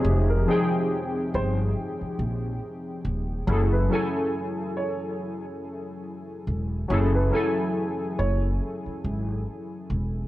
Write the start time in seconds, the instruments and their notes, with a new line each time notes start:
Already playing: synth keys F3 C4 D#4 G4 G#4 C#5 E5
0.05 upright bass F1
0.30 upright piano A#4
0.47 synth keys F3 C4 D#4 G5, upright piano G#4
0.52 synth keys G#4
1.34 upright bass G1, upright piano C5
2.01 muted upright bass stroke
2.19 upright bass A#1
3.05 upright bass D#1
3.47 upright bass F#1, synth keys F#3 C#4 E4 G#4
3.52 synth keys A4
3.72 upright piano B4
3.89 synth keys F#3 C#4 E4 G#5, upright piano A4
3.95 synth keys A4
4.77 upright piano C#5
6.47 upright bass E1
6.88 upright bass F#1, synth keys F#3 C#4 E4 G#4
6.94 synth keys A4
7.15 upright piano B4
7.31 synth keys F#3 C#4 E4, upright piano A4
7.35 synth keys A4 G#5
8.19 upright bass F#1, upright piano C#5
8.86 muted upright bass stroke
9.04 upright bass G#1
9.90 upright bass E1